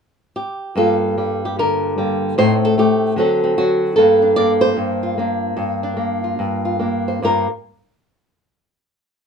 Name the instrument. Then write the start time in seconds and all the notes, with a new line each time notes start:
nylon-string guitar
0.36 G4
0.76 G2 G3 A#3 F4 A4
1.18 G3
1.45 G4
1.59 D3 A#4
1.98 G3 A#3
2.38 A2 A3 C4 D#4 C5
2.65 A4
2.78 A3 G4
3.16 D3 F#3 C4 F#4 A4
3.44 C4
3.58 F#3 F#4
3.96 G2 A#3 D4 A4
4.22 D4
4.36 A#3 D5
4.61 C5
4.77 G2
5.03 F4
5.18 A#3 D4
5.57 G2
5.83 D4
5.97 A#3
6.24 F4
6.39 G2
6.65 F4
6.79 A#3 D4
7.08 C5
7.22 G2 G3 A#3 F4 A#4